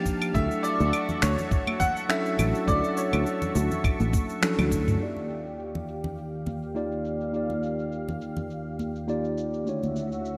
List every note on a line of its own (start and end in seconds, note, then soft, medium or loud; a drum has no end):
0.00 0.31 F3 loud
0.00 0.37 A#3 medium
0.00 0.35 D4 medium
0.00 0.37 D#4 medium
0.00 0.31 G4 medium
0.00 0.37 G4 loud
0.00 0.31 F5 medium
0.00 4.97 A5 medium
0.00 0.33 F6 medium
0.06 kick medium
0.06 shaker medium
0.22 claves medium
0.22 shaker soft
0.32 0.47 D2 medium
0.32 2.05 F#3 medium
0.32 2.06 A3 medium
0.32 2.06 D4 medium
0.32 4.97 F#4 medium
0.32 0.65 E5 loud
0.32 4.97 E5 medium
0.32 4.97 C#6 medium
0.32 kick loud
0.32 shaker soft
0.37 2.08 A4 medium
0.51 shaker soft
0.63 1.18 D5 loud
0.63 shaker medium
0.80 0.90 D2 medium
0.80 shaker soft
0.93 claves medium
0.93 shaker soft
1.09 low conga medium
1.09 shaker soft
1.22 1.35 D2 loud
1.22 1.82 C#5 medium
1.22 finger snap medium
1.22 shaker medium
1.38 low conga medium
1.38 shaker soft
1.51 kick loud
1.51 shaker soft
1.67 high conga medium
1.67 claves medium
1.80 2.10 F#5 loud
1.80 kick medium
1.80 high conga medium
1.80 low conga medium
1.80 shaker medium
1.96 shaker soft
2.09 2.64 F#3 loud
2.09 2.64 C#4 medium
2.09 2.65 D4 medium
2.09 2.65 E4 medium
2.09 2.65 A4 loud
2.09 2.64 E5 loud
2.09 finger snap medium
2.09 shaker soft
2.26 shaker soft
2.39 2.51 A1 medium
2.39 claves medium
2.39 shaker medium
2.55 shaker soft
2.65 2.80 D2 medium
2.65 4.38 F#3 medium
2.65 4.39 C#4 medium
2.65 4.39 D4 medium
2.65 4.40 E4 medium
2.65 2.98 D5 loud
2.65 kick loud
2.65 shaker soft
2.70 4.41 A4 medium
2.84 shaker soft
2.97 3.80 C#5 medium
2.97 shaker medium
3.13 3.23 D2 medium
3.13 claves medium
3.13 shaker soft
3.26 shaker soft
3.42 low conga medium
3.42 shaker soft
3.55 3.68 D2 medium
3.55 shaker medium
3.71 low conga medium
3.71 shaker soft
3.84 kick loud
3.84 claves medium
3.84 shaker soft
4.00 4.11 A1 medium
4.00 high conga medium
4.00 shaker soft
4.13 kick loud
4.13 high conga medium
4.13 shaker medium
4.29 shaker soft
4.41 4.97 F#3 loud
4.41 4.97 C#4 medium
4.41 4.98 D4 medium
4.41 4.98 E4 medium
4.41 4.98 A4 loud
4.41 finger snap medium
4.41 high tom medium
4.41 shaker soft
4.58 4.96 D2 medium
4.58 high tom medium
4.58 claves medium
4.58 shaker soft
4.72 kick medium
4.72 shaker medium
4.88 mid tom medium
4.88 shaker soft
4.98 9.63 D#2 medium
4.98 6.71 A#3 medium
4.98 6.72 D#4 medium
4.98 6.72 F4 medium
4.98 9.63 G4 medium
4.98 6.73 G4 medium
4.98 9.63 F5 medium
4.98 shaker soft
5.03 6.73 D5 medium
5.17 high conga soft
5.17 shaker soft
5.30 shaker medium
5.46 shaker soft
5.59 shaker soft
5.75 low conga medium
5.75 shaker soft
5.88 shaker medium
6.04 low conga medium
6.04 shaker soft
6.17 shaker soft
6.46 high conga medium
6.46 low conga medium
6.46 shaker medium
6.63 shaker soft
6.75 7.30 A#3 medium
6.75 7.30 D#4 medium
6.75 7.31 F4 medium
6.75 7.31 G4 medium
6.75 7.31 D5 medium
6.75 shaker soft
6.92 shaker soft
7.05 shaker medium
7.21 shaker soft
7.32 9.04 A#3 medium
7.32 9.05 D#4 medium
7.32 9.06 F4 medium
7.32 9.06 G4 medium
7.32 shaker soft
7.36 9.07 D5 medium
7.50 high conga medium
7.50 shaker soft
7.63 shaker medium
7.79 shaker soft
7.92 shaker soft
8.08 low conga medium
8.08 shaker soft
8.21 shaker medium
8.37 low conga medium
8.37 shaker soft
8.50 shaker soft
8.79 high conga medium
8.79 shaker medium
8.95 shaker soft
9.07 9.63 A#3 medium
9.07 9.63 D#4 medium
9.07 9.64 F4 medium
9.07 9.64 G4 medium
9.07 9.64 D5 loud
9.07 shaker soft
9.25 shaker soft
9.38 shaker medium
9.54 shaker soft
9.64 10.37 D2 medium
9.64 10.37 A3 medium
9.64 10.37 D4 medium
9.64 10.37 E4 medium
9.64 10.37 F#4 medium
9.64 10.37 E5 medium
9.64 shaker soft
9.69 10.37 C#5 medium
9.83 high conga medium
9.83 shaker soft
9.96 shaker medium
10.12 shaker soft
10.25 shaker soft